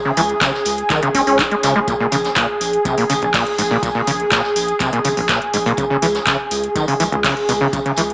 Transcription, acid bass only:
0.05 C#3
0.17 E3
0.41 C#3
0.90 D#3
1.03 C#3
1.15 C#4
1.27 C#4
1.39 E4
1.51 G#3
1.63 C#3
1.76 G#3
1.88 A#2
2.00 A#2
2.12 C#3
2.36 A#2
2.85 C3
2.98 A#2
3.10 C#3
3.22 A#1
3.34 A#2
3.58 G#2
3.71 A#2
3.83 A#2
3.95 A#2
4.07 C#3
4.32 A#2
4.80 C3
4.93 A#2
5.05 C#3
5.17 A#1
5.29 A#2
5.54 G#2
5.66 A#2
5.78 C#3
5.90 C#3
6.02 E3
6.27 C#3
6.76 D#3
6.88 C#3
7.00 E3
7.12 C#2
7.24 C#3
7.49 B2
7.61 C#3
7.73 C#3
7.86 C#3
7.97 E3

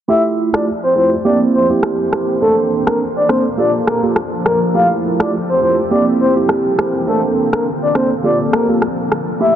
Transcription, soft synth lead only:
0.09 E5
0.54 D5
0.83 C5
0.96 C5
1.25 D5
1.54 C5
2.42 A4
2.87 A#4
3.16 D5
3.29 C5
3.58 D5
3.88 A#4
4.46 A#4
4.75 F5
5.20 D5
5.49 C5
5.62 C5
5.91 D5
6.20 C5
7.08 A4
7.53 A#4
7.82 D5
7.95 C5
8.24 D5
8.53 A#4
9.41 E5

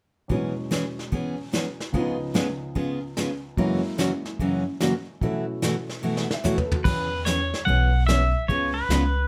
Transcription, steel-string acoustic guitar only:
0.29 E3 B3 C#4 G#4
0.71 E3 B3 C#4 G#4
1.12 E3 B3 C#4 G#4
1.53 E3 B3 C#4 G#4
1.94 C#3 G#3 B3 F4 G#4
2.34 C#3 G#3 B3 F4 G#4
2.75 C#3 G#3 B3 F4 G#4
3.17 C#3 G#3 B3 F4 G#4
3.58 F#2 C#3 E3 A#3 C#4 F#4
3.98 F#2 C#3 E3 A#3 C#4 F#4
4.40 F#2 C#3 E3 A#3 C#4 F#4
4.80 F#2 C#3 E3 A#3 C#4 F#4
5.22 B2 E3 A3 E4 F#4
5.62 B2 E3 A3 E4 F#4
6.03 B2 E3 A3 E4 F#4
6.44 B2 E3 A3 E4 F#4
6.85 E3 B3 C#4 G#4
7.26 E3 B3 C#4 G#4
7.68 E3 B3 C#4 G#4
8.08 E3 B3 C#4 G#4
8.50 C#3 G#3 B3 F4 G#4
8.91 C#3 G#3 B3 F4 G#4

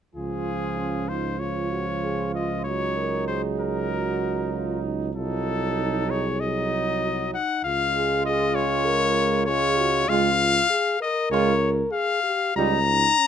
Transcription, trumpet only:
0.15 G#4
1.09 C5
1.40 C#5
2.35 D#5
2.64 C#5
3.27 C5
3.60 A#4
5.15 A4
6.10 C#5
6.40 D#5
7.34 F#5
7.64 F5
8.25 D#5
8.55 C#5
9.46 C#5
10.09 F5
11.02 D#5
11.31 C#5
11.93 F5
12.57 A#5

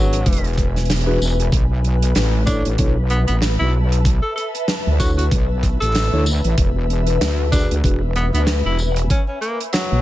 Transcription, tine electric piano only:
Already playing: D4 F#4 G#4 B4
1.07 D4 F#4 G#4 B4
2.47 D4 E4 A4 C#5
2.79 D4 E4 A4 C#5
5.00 D4 E4 A4 C#5
6.13 D4 E4 A4 C#5
7.52 D4 F#4 G#4 B4
7.85 D4 F#4 G#4 B4

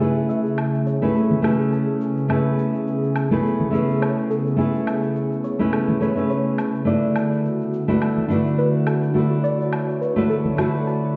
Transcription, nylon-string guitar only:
0.00 A3 C#4 E4 G#4 B4
1.02 A3 C#4 E4 G#4 B4
1.42 A3 C#4 E4 G#4
1.47 B4
2.28 A3 C#4 E4 G#4
2.33 B4
3.31 A3 C#4 E4 G#4 B4
3.70 A3 C#4 E4 G#4
3.75 B4
4.56 A3 C#4 E4 G#4
4.61 B4
5.59 A3 C#4 E4 G#4 B4
6.00 A3 C#4 E4 G#4 B4
6.15 A3 C#4 E4 G#4
6.19 B4
6.85 A3 D4 E4 F#4
6.89 B4
7.88 A3 D4 E4 F#4 B4
8.28 A3 D4 E4 F#4
8.33 B4
9.14 A3 D4 E4 F#4
9.18 B4
10.16 A3 D4 E4 F#4 B4
10.56 A3 D4 E4 F#4
10.61 B4

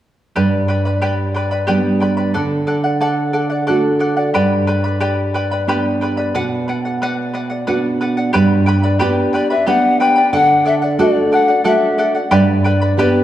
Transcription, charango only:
0.36 G4 B4 D5 G5 B5
0.68 B4 D5 G5 B5
0.85 B4 D5 B5
1.01 G4 B4 D5 G5 B5
1.35 B4 D5 G5 B5
1.51 B4 D5 B5
1.67 G4 B4 D5 G5 B5
2.00 B4 D5 G5 B5
2.17 B4 D5 B5
2.34 A4 D5 F#5
2.67 A4 D5 F#5
2.84 D5 F#5
3.01 A4 D5 F#5
3.33 A4 D5 F#5
3.50 D5 F#5
3.67 A4 D5 F#5
3.99 A4 D5 F#5
4.17 D5 F#5
4.34 G4 B4 D5 G5 B5
4.67 B4 D5 G5 B5
4.84 B4 D5 B5
5.00 G4 B4 D5 G5 B5
5.34 B4 D5 G5 B5
5.51 B4 D5 B5
5.68 G4 B4 D5 G5 B5
6.01 B4 D5 G5 B5
6.17 B4 D5 B5
6.35 B4 D5 F#5
6.68 B4 D5 F#5
6.85 D5 F#5
7.02 B4 D5 F#5
7.34 B4 D5 F#5
7.50 D5 F#5
7.67 B4 D5 F#5
8.01 B4 D5 F#5
8.17 D5 F#5
8.33 G4 B4 D5 G5 B5
8.66 B4 D5 G5 B5
8.83 B4 D5 B5
8.99 G4 B4 D5 G5 B5
9.33 B4 D5 G5 B5
9.50 B4 D5 B5
9.67 G4 B4 D5 B5
10.00 B4 D5 G5 B5
10.16 B4 D5 B5
10.33 A4 D5 F#5
10.65 A4 D5 F#5
10.82 D5 F#5
10.99 A4 D5 F#5
11.32 A4 D5 F#5
11.48 D5 F#5
11.64 A4 D5 F#5
11.98 A4 D5 F#5
12.15 D5 F#5
12.31 G4 B4 D5 G5 B5
12.64 B4 D5 G5 B5
12.81 B4 D5 B5
12.99 G4 B4 D5 G5 B5

